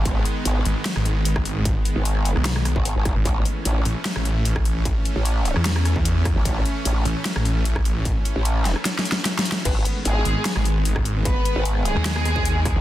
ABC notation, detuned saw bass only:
X:1
M:4/4
L:1/16
Q:1/4=150
K:G#phr
V:1 name="Detuned saw bass" clef=bass
z6 G,,, z2 G,,,4 G,,,3- | G,,, z6 B,,,4 z4 G,,, | z6 A,,, z2 A,,,4 A,,,3- | A,,, z6 E,,8 z |
z6 A,,, z2 A,,,4 A,,,3- | A,,, z12 z3 | z6 G,,, z2 G,,,4 G,,,3- | G,,, z6 D,,8 z |]